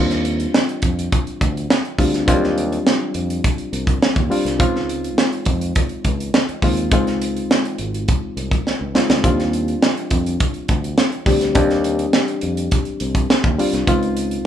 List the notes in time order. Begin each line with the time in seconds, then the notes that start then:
Already playing: D#2 G3 C4 D4 F4
0.10 snare, closed hi-hat
0.25 closed hi-hat
0.40 closed hi-hat
0.54 snare
0.69 closed hi-hat
0.82 F2, kick, closed hi-hat
0.99 closed hi-hat
1.12 kick, closed hi-hat
1.27 closed hi-hat
1.41 D2, kick, closed hi-hat
1.57 closed hi-hat
1.70 snare
1.85 closed hi-hat
1.98 D2 G3 C4 D4 F4, kick, open hi-hat
2.14 snare, closed hi-hat
2.27 D#2 F#3 C4 D4 F4, kick, closed hi-hat
2.33 G3
2.44 snare
2.58 closed hi-hat
2.72 closed hi-hat
2.87 snare
3.14 F2, closed hi-hat
3.30 closed hi-hat
3.44 kick, closed hi-hat
3.58 closed hi-hat
3.73 C2, closed hi-hat
3.87 kick, closed hi-hat
4.02 muted fingered electric bass stroke, snare
4.16 D#2, kick, closed hi-hat
4.30 G3 C4 D4 F4, open hi-hat
4.45 C2, snare, closed hi-hat
4.59 C#2 G#3 C4 D#4 F4, kick, closed hi-hat
4.76 snare
4.89 closed hi-hat
5.04 closed hi-hat
5.18 snare
5.33 closed hi-hat
5.45 F2, kick, closed hi-hat
5.61 closed hi-hat
5.75 kick, closed hi-hat
5.89 closed hi-hat
6.04 C#2, kick, closed hi-hat
6.20 closed hi-hat
6.34 snare
6.49 muted fingered electric bass stroke, closed hi-hat
6.62 D#2 G#3 C4 D#4 F4, kick, open hi-hat
6.77 closed hi-hat
6.91 C#2 G#3 C4 D#4 F4, kick, closed hi-hat
7.07 snare, closed hi-hat
7.22 closed hi-hat
7.36 closed hi-hat
7.51 snare
7.65 closed hi-hat
7.78 G#1, closed hi-hat
7.94 closed hi-hat
8.08 kick, closed hi-hat
8.37 C2, closed hi-hat
8.51 kick, closed hi-hat
8.66 muted fingered electric bass stroke, snare
8.81 C#2
8.95 G#3 C4 D#4 F4, snare
9.10 D2, snare
9.24 D#2 G3 C4 D4 F4, kick, closed hi-hat
9.39 snare, closed hi-hat
9.53 closed hi-hat
9.68 closed hi-hat
9.82 snare
9.97 closed hi-hat
10.10 F2, kick, closed hi-hat
10.26 closed hi-hat
10.40 kick, closed hi-hat
10.54 closed hi-hat
10.68 D2, kick, closed hi-hat
10.84 closed hi-hat
10.98 snare
11.12 closed hi-hat
11.26 D2 G3 C4 D4 G4, kick, open hi-hat
11.41 snare, closed hi-hat
11.55 D#2 G3 C4 D4 G4, kick, closed hi-hat
11.70 snare, closed hi-hat
11.84 closed hi-hat
11.99 closed hi-hat
12.13 snare
12.28 closed hi-hat
12.41 F2, closed hi-hat
12.57 closed hi-hat
12.71 kick, closed hi-hat
12.85 closed hi-hat
13.00 C2, closed hi-hat
13.15 kick, closed hi-hat
13.30 snare
13.44 D#2, kick, closed hi-hat
13.58 G3 C4 D4 F4, open hi-hat
13.73 C2, snare, closed hi-hat
13.87 C#2 G#3 C4 D#4 F4, kick, closed hi-hat
14.03 closed hi-hat
14.17 closed hi-hat
14.31 closed hi-hat